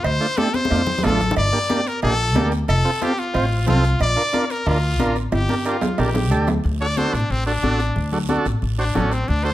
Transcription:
0.04 upright bass D2, trumpet C5, cowbell, high conga, long guiro
0.20 transistor combo organ A3 D4 F4
0.37 transistor combo organ A3 D4 G4, trumpet A4, cowbell, high conga, short guiro
0.54 trumpet C5, high conga, short guiro
0.65 high conga
0.70 upright bass F2, transistor combo organ A3 D4 F4, cowbell, long guiro
0.76 high conga
0.87 low conga
0.98 low conga
1.03 upright bass A1, transistor combo organ A3 D4 F4, trumpet A4, cowbell, low timbale, short guiro
1.09 low conga
1.20 low conga, short guiro
1.31 low conga
1.36 upright bass G1, trumpet D5, cowbell, high conga, long guiro
1.52 transistor combo organ A#3 D4 G4
1.69 transistor combo organ A#3 D4 G4, cowbell, high conga, short guiro
1.86 trumpet A#4, short guiro
2.02 upright bass A#1, transistor combo organ A#3 D4 G4, trumpet A4, cowbell, high conga, long guiro
2.35 upright bass D2, transistor combo organ A#3 D4 G4, cowbell, high conga, low timbale, short guiro
2.52 short guiro
2.68 upright bass F1, trumpet A4, cowbell, high conga, long guiro
2.85 transistor combo organ C4 F4 A4
3.01 transistor combo organ C4 F4 A4, trumpet G4, cowbell, high conga, short guiro
3.17 trumpet F4, short guiro
3.33 upright bass A1, transistor combo organ C4 F4 C5, cowbell, high conga, long guiro
3.66 upright bass C2, transistor combo organ C4 F4 A4, trumpet F4, cowbell, high conga, low conga, short guiro
3.84 short guiro
4.00 upright bass A#1, trumpet D5, cowbell, high conga, long guiro
4.16 transistor combo organ D4 F4 A#4
4.33 transistor combo organ D4 F4 A#4, cowbell, high conga, short guiro
4.50 trumpet A#4, short guiro
4.66 upright bass D2, transistor combo organ D4 F4 A#4, trumpet F4, cowbell, high conga, long guiro
4.99 upright bass A1, transistor combo organ D4 F4 A#4, cowbell, high conga, short guiro
5.16 short guiro
5.32 upright bass G1, trumpet G4, cowbell, high conga, high timbale, long guiro
5.49 transistor combo organ D4 G4 A#4, high conga
5.65 transistor combo organ D4 G4 A#4, trumpet F4, cowbell, short guiro
5.81 low conga, low timbale, short guiro
5.98 upright bass A#1, transistor combo organ D4 G4 A#4, trumpet G4, cowbell, low timbale, long guiro
6.14 low conga, low timbale
6.31 upright bass D2, transistor combo organ D4 G4 A4, cowbell, short guiro
6.47 low conga, low timbale, short guiro
6.64 upright bass D2, high conga, long guiro
6.81 transistor combo organ D4 F#4 A4, trumpet D5
6.97 transistor combo organ D4 F#4 A4, trumpet C5, high conga, short guiro
7.13 upright bass A1, trumpet D4, short guiro
7.30 upright bass A1, trumpet C4, high conga, long guiro
7.46 transistor combo organ D4 F#4 A4, trumpet D4
7.63 upright bass A1, transistor combo organ D4 F#4 A4, high conga, short guiro
7.80 short guiro
7.96 upright bass D2, high conga, long guiro
8.12 transistor combo organ D4 F#4 A4, low conga
8.29 transistor combo organ D4 F#4 A4, high conga, short guiro
8.45 upright bass A1, short guiro
8.62 upright bass A1, high conga, long guiro
8.78 transistor combo organ D4 F#4 C5, trumpet D4
8.94 upright bass A1, trumpet C#4, transistor combo organ D4 F#4 A4, high conga, low conga, short guiro
9.12 trumpet C4, short guiro
9.28 upright bass D2, trumpet D4, high conga, long guiro
9.44 transistor combo organ D4 F#4 A4, trumpet C5

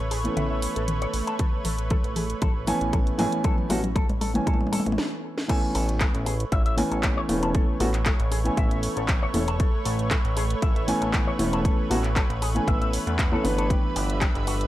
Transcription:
Already playing: analog synth pad A3 B4 C#5
0.00 analog synth bass A1
0.11 clean electric guitar G#4, open hi-hat
0.24 grand piano E3 A3 B3 C#4, closed hi-hat
0.37 analog synth bass A1, clean electric guitar E5, closed hi-hat, mid tom
0.51 clean electric guitar E5
0.62 open hi-hat
0.76 analog synth bass A1, clean electric guitar A4, closed hi-hat
0.88 closed hi-hat, mid tom
1.02 clean electric guitar C#5, closed hi-hat
1.14 analog synth bass A1, open hi-hat
1.27 clean electric guitar A5, closed hi-hat
1.39 clean electric guitar A4, kick, closed hi-hat, mid tom
1.65 analog synth bass A1, clean electric guitar A4, open hi-hat, mid tom
1.78 closed hi-hat
1.90 clean electric guitar A4, kick, closed hi-hat, mid tom
2.04 analog synth bass A1, closed hi-hat
2.16 clean electric guitar G#4, open hi-hat, mid tom
2.30 closed hi-hat
2.42 analog synth bass A1, clean electric guitar A4, kick, closed hi-hat, mid tom
2.67 grand piano E3 A3 B3 C#4 G#5, clean electric guitar A4, open hi-hat, mid tom
2.81 analog synth bass A1, closed hi-hat
2.93 clean electric guitar A4, kick, closed hi-hat, mid tom
3.07 closed hi-hat
3.18 analog synth bass A1, grand piano E3 A3 B3 C#4 G#5, clean electric guitar G#4, open hi-hat, mid tom
3.32 closed hi-hat
3.44 clean electric guitar A4, kick, closed hi-hat, mid tom
3.58 mid tom
3.69 analog synth bass A1, grand piano E3 A3 B3 C#4 F#4, clean electric guitar A4, open hi-hat, mid tom
3.84 closed hi-hat, mid tom
3.96 clean electric guitar A4, kick, closed hi-hat, mid tom
4.09 analog synth bass A1, closed hi-hat, mid tom
4.21 clean electric guitar A4, open hi-hat, mid tom
4.34 grand piano E3 A3 B3 C#4 G#5, closed hi-hat, mid tom
4.47 analog synth bass A1, clean electric guitar A4, kick, closed hi-hat, mid tom
4.54 mid tom
4.61 mid tom
4.67 mid tom
4.72 clean electric guitar A4, open hi-hat, mid tom
4.80 mid tom
4.86 analog synth bass A1, closed hi-hat, mid tom
4.92 mid tom
4.98 snare
5.38 snare
5.48 grand piano E3 A3 B3 C#4 G#5, analog synth pad A3 B4 C#5, clean electric guitar A4, kick, closed hi-hat, crash
5.75 analog synth bass A1, clean electric guitar A4, open hi-hat
5.89 closed hi-hat
6.00 clean electric guitar A4, kick, clap, closed hi-hat
6.14 analog synth bass A1, closed hi-hat
6.26 clean electric guitar G#4, open hi-hat
6.40 closed hi-hat
6.52 analog synth bass A1, clean electric guitar E5, kick, closed hi-hat
6.66 clean electric guitar E5, closed hi-hat
6.77 grand piano E3 A3 B3 C#4 G#5, open hi-hat
6.91 analog synth bass A1, clean electric guitar A4, closed hi-hat
7.03 kick, clap, closed hi-hat
7.17 clean electric guitar C#5
7.29 analog synth bass E1, grand piano E3 A3 B3 C#4, open hi-hat
7.43 clean electric guitar A5, closed hi-hat
7.55 clean electric guitar A4, kick, closed hi-hat
7.80 analog synth bass A1, grand piano E3 A3 B3 C#4 F#4, clean electric guitar A4, open hi-hat
7.94 clap, closed hi-hat
8.06 clean electric guitar A4, kick, clap, closed hi-hat
8.20 analog synth bass A1, closed hi-hat
8.32 clean electric guitar G#4, open hi-hat
8.44 grand piano E3 A3 B3 C#4 G#5, closed hi-hat
8.57 analog synth bass A1, clean electric guitar E5, kick, closed hi-hat
8.71 clean electric guitar E5, closed hi-hat
8.83 open hi-hat
8.97 analog synth bass A1, clean electric guitar A4, closed hi-hat
9.08 kick, clap, closed hi-hat
9.23 clean electric guitar C#5
9.34 analog synth bass E1, grand piano E3 A3 B3 C#4 A4, open hi-hat
9.48 clean electric guitar A5, closed hi-hat
9.60 clean electric guitar A4, kick, closed hi-hat
9.85 analog synth bass A1, clean electric guitar A4, open hi-hat
9.99 closed hi-hat
10.11 clean electric guitar A4, kick, clap, closed hi-hat
10.25 analog synth bass A1, closed hi-hat
10.37 clean electric guitar G#4, open hi-hat
10.50 closed hi-hat
10.62 analog synth bass A1, clean electric guitar E5, kick, closed hi-hat
10.76 clean electric guitar E5, closed hi-hat
10.87 grand piano E3 A3 B3 C#4 G#5, open hi-hat
11.02 analog synth bass A1, clean electric guitar A4, closed hi-hat
11.13 kick, clap, closed hi-hat
11.27 clean electric guitar C#5
11.39 analog synth bass E1, grand piano E3 A3 B3 C#4, open hi-hat
11.53 clean electric guitar A5, closed hi-hat
11.65 clean electric guitar A4, kick, closed hi-hat
11.90 analog synth bass A1, grand piano E3 A3 B3 C#4 F#4, clean electric guitar A4, open hi-hat
12.04 clap, closed hi-hat
12.16 clean electric guitar A4, kick, clap, closed hi-hat
12.30 analog synth bass A1, closed hi-hat
12.42 clean electric guitar G#4, open hi-hat
12.54 grand piano E3 A3 B3 C#4 G#5, closed hi-hat
12.68 analog synth bass A1, clean electric guitar E5, kick, closed hi-hat
12.81 clean electric guitar E5, closed hi-hat
12.93 open hi-hat
13.07 analog synth bass E2, clean electric guitar A3, closed hi-hat
13.19 kick, clap, closed hi-hat
13.32 grand piano E3 A3 B3 C#4 A4, clean electric guitar A4
13.43 analog synth bass G1, grand piano E3 A3 B3 D4 B4, open hi-hat
13.58 clean electric guitar A4, closed hi-hat
13.70 analog synth pad G3 E5, clean electric guitar G4, kick, closed hi-hat
13.96 analog synth bass G1, clean electric guitar G4, open hi-hat
14.10 closed hi-hat
14.21 clean electric guitar G4, kick, clap, closed hi-hat
14.35 analog synth bass G1, closed hi-hat
14.47 clean electric guitar F#4, open hi-hat
14.61 closed hi-hat

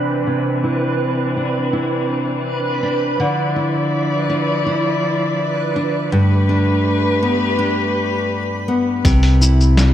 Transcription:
Already playing: nylon-string guitar C3 D4 E4, string quartet E3 C4 D4, synth texture B4 B5
0.27 nylon-string guitar C3
0.64 nylon-string guitar E4
1.37 nylon-string guitar D4
1.73 nylon-string guitar E4
2.83 nylon-string guitar D4
3.19 nylon-string guitar D3, string quartet F3 E4 D5
3.56 nylon-string guitar E4
4.30 nylon-string guitar D4
4.66 nylon-string guitar E4
5.76 nylon-string guitar D4
6.11 nylon-string guitar G2, string quartet A3 G4 B4
6.49 nylon-string guitar D4
7.23 nylon-string guitar B3
7.59 nylon-string guitar D4
8.68 nylon-string guitar B3
9.05 analog synth bass C2, nylon-string guitar C3, kick, open hi-hat, cabasa
9.23 open hi-hat
9.41 nylon-string guitar E4, cabasa
9.61 cabasa
9.77 snare, open hi-hat, cabasa

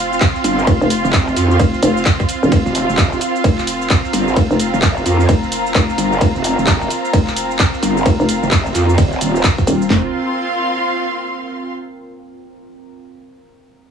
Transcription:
Already playing: fm bass F1, ambient pad C4 F4 F5, string section C4 F4 F5 C6
0.13 shaker
0.21 kick, clap, ride, shaker
0.36 shaker
0.44 wobble bass G1, open hi-hat, shaker
0.59 shaker
0.67 fm bass F1, kick, ride, shaker
0.81 fm bass F1, shaker
0.90 open hi-hat, shaker
1.04 wobble bass F1, shaker
1.13 kick, clap, ride, shaker
1.28 shaker
1.36 wobble bass F2, open hi-hat, shaker
1.51 shaker
1.60 fm bass F1, kick, ride, shaker
1.74 shaker
1.83 fm bass F1, open hi-hat, shaker
1.97 shaker
2.05 kick, clap, ride, shaker
2.20 kick, shaker
2.29 open hi-hat, shaker
2.43 fm bass D#1, shaker
2.52 fm bass F1, ambient pad A#4, kick, ride, shaker
2.66 wobble bass F1, shaker
2.75 open hi-hat, shaker
2.89 wobble bass F1, shaker
2.98 kick, clap, ride, shaker
3.13 shaker
3.21 open hi-hat, shaker
3.36 shaker
3.44 fm bass F1, kick, ride, shaker
3.58 clap, shaker
3.67 open hi-hat, shaker
3.82 shaker
3.90 kick, clap, ride, shaker
4.05 string section A#5, shaker
4.13 wobble bass G1, open hi-hat, shaker
4.28 shaker
4.36 fm bass F1, kick, ride, shaker
4.51 fm bass F1, shaker
4.60 open hi-hat, shaker
4.74 wobble bass F1, shaker
4.82 kick, clap, ride, shaker
4.97 shaker
5.06 wobble bass F2, open hi-hat, shaker
5.20 shaker
5.29 fm bass F1, kick, ride, shaker
5.43 shaker
5.52 open hi-hat, shaker
5.66 shaker
5.74 fm bass F1, kick, clap, ride, shaker
5.90 shaker
5.98 wobble bass G1, open hi-hat, shaker
6.13 shaker
6.21 fm bass F1, kick, ride, shaker
6.35 wobble bass F1, shaker
6.44 open hi-hat, shaker
6.58 wobble bass F1, shaker
6.67 kick, clap, ride, shaker
6.82 shaker
6.90 open hi-hat, shaker
7.05 shaker
7.13 fm bass F1, kick, ride, shaker
7.27 clap, shaker
7.36 open hi-hat, shaker
7.51 shaker
7.59 kick, clap, ride, shaker
7.74 shaker
7.83 wobble bass G1, open hi-hat, shaker
7.97 shaker
8.06 fm bass F1, kick, ride, shaker
8.20 fm bass F1, shaker
8.29 open hi-hat, shaker
8.43 wobble bass F1, shaker
8.51 kick, clap, ride, shaker
8.66 shaker
8.74 wobble bass F2, clap, open hi-hat, shaker
8.89 shaker
8.98 wobble bass D#1, kick, ride, shaker
9.13 shaker
9.21 open hi-hat, shaker
9.36 shaker
9.44 kick, clap, ride, shaker
9.58 kick, shaker
9.67 fm bass D#1, open hi-hat, shaker
9.82 shaker
9.90 fm bass F1, string section C4, snare, clap, floor tom
9.99 string section F4
10.06 string section F5
10.12 string section C6

